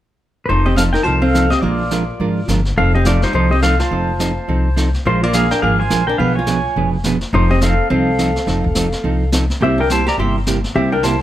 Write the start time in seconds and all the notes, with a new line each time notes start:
0.46 F1 F3 C4 B4 C5, brush sweep
0.50 D#4 A4
0.66 C4 G4 D#5
0.76 F3 C4 D#4 A4 F5, snare, hi-hat pedal
0.93 D#4 A#4 G5, snare
1.03 C2 F3 C4 D#4 F4 A4 C5 A5, brush sweep
1.22 C4 A4 F5
1.34 F3 C4 D#4 A4, snare, hi-hat pedal
1.50 C4 G4 D#5, snare
1.61 A#1 F3 G#3 A#3 D4 F4 A#4 D5, brush sweep
1.91 F3 G#3 D4 F4 A#4, snare, hi-hat pedal
2.20 G#1 F3 G#3 D4 F4 A#4, brush sweep
2.48 G1 F3 G#3 D4 F4 A#4, snare, hi-hat pedal
2.65 snare
2.76 F1 F3 C4 D#4 A4 F5, brush sweep
2.95 C4 G4 D#5
3.05 F3 A3 C4 D#4 F4 A4 D5, snare, hi-hat pedal
3.22 G3 D#4 C5, snare
3.33 C2 F3 C4 D#4 A4 C5, brush sweep
3.51 C4 G4 D#5
3.62 F3 C4 D#4 A4 F5, snare, hi-hat pedal
3.79 F4 C5 A5, snare
3.91 F1 F3 C4 D#4 A4, brush sweep
4.19 F3 C4 D#4 A4, snare, hi-hat pedal
4.48 C2 F3 C4 D#4 A4, brush sweep
4.76 F3 C4 D#4 A4, snare, hi-hat pedal
4.94 snare
5.05 A#1 F3 G#3 D4 F4 A#4 C5, brush sweep
5.23 A#3 F4 D5
5.33 F3 G#3 A#3 D4 F4 G#4 A#4 F5, snare, hi-hat pedal
5.51 D4 A#4 G5, snare
5.62 G#1 F3 G#3 A#3 D4 F4 G#4 A#4 F5, brush sweep
5.79 F4 C5 G#5
5.90 A#1 F3 G#3 D4 F4 A#4, snare, hi-hat pedal
6.07 D4 A#4 G5
6.18 B1 B2 F3 B3 D4 G#4 B4 F5, brush sweep
6.35 F4 C#5 G#5
6.46 B2 F3 B3 D4 G#4 B4, snare, hi-hat pedal
6.75 F1 B2 F3 B3 D4 G#4 B4, brush sweep
7.04 B2 F3 B3 D4 G#4 B4, snare, hi-hat pedal
7.21 snare
7.32 F1 F3 C4 D#4 A4 C5, brush sweep
7.50 C4 G4 D#5
7.61 F3 C4 D#4 A4 F5, snare, hi-hat pedal
7.90 C2 F3 C4 D#4 A4 F5, brush sweep
8.19 F3 C4 D#4 A4, snare, hi-hat pedal
8.36 snare
8.47 F1 F3 C4 D#4 A4, brush sweep, snare
8.64 kick
8.75 F3 C4 D#4 A4, snare, hi-hat pedal
8.92 snare
9.03 C2 F3 C4 D#4 A4, brush sweep
9.32 F3 C4 D#4 A4, snare, hi-hat pedal
9.50 snare
9.60 C2 C3 G3 A#3 C4 E4 G4 E5, brush sweep
9.78 D4 A#4 G5
9.90 C3 G3 A#3 E4 G4 C5 A5, snare, hi-hat pedal
10.07 G4 D5 A#5, snare
10.18 G1 C3 G3 A#3 E4 G4 E5 C6, brush sweep
10.46 C3 G3 A#3 E4 G4, snare, hi-hat pedal
10.64 snare
10.75 C2 C3 G3 A#3 C4 E4 G4 E5, brush sweep
10.92 D4 A#4 G5
11.03 C3 G3 A#3 E4 G4 C5 A5, snare, hi-hat pedal